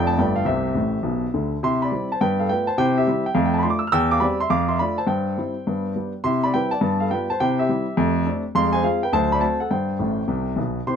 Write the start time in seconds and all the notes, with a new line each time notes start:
Already playing: F1 F2 A3 D4 F4 G5
0.07 A5
0.18 G1 G2 A3 B3 F4 B4 D5 G5
0.36 F5
0.45 C2 C3 G4 C5 E5
0.75 A1 A2
1.03 B1 B2
1.34 D2 D3
1.63 C3 E4 E5 C6
1.82 D5 B5
1.92 G3 C4 E4
2.12 C5 A5
2.21 G2 B3 B4 G5
2.40 A4 F5
2.49 A3 B3 F4 B4 G5
2.67 C5 A5
2.78 C3 E4 C5 G5
2.98 G4 E5
3.07 G3 C4 E4
3.26 G5
3.34 F2 A3 F5
3.45 G5
3.54 A5
3.59 B5
3.63 A3 D4 F4 C6
3.70 D6
3.79 E6
3.87 F6
3.92 E2 G5 E6
4.11 F5 D6
4.20 G3 C4 G4 D5 B5
4.40 E5 C6
4.50 F2 F5 D6
4.68 E5 C6
4.79 A3 D4 F4 D5 B5
4.98 C5 A5
5.07 G2 C5 G5
5.37 G3 C4 E4
5.67 G2 B3
5.96 G3 B3 D4
6.24 C3 E4 E5 C6
6.43 D5 B5
6.54 G3 C4 E4 B4 G5
6.71 D5 A5
6.81 G2 B3
7.00 A4 F5
7.11 G3 B3 F4 B4 G5
7.30 C5 A5
7.40 C3 E4 C5 G5
7.59 G4 E5
7.69 G3 C4 E4
7.97 F2 A3
8.26 A3 C4 D4
8.55 F2 G#3 F5 C6
8.73 C5 G#5
8.83 G#3 C4 F4 G#4 F5
9.03 B4 G5
9.13 D2 F#3 C5 A5
9.32 D5 B5
9.40 A3 C4 F#4 C5 A5
9.60 A4 F#5
9.71 G2 C5 G5
9.99 A1 A2
10.28 C2 C3
10.56 B1 B2
10.87 C3 E4 C5 C6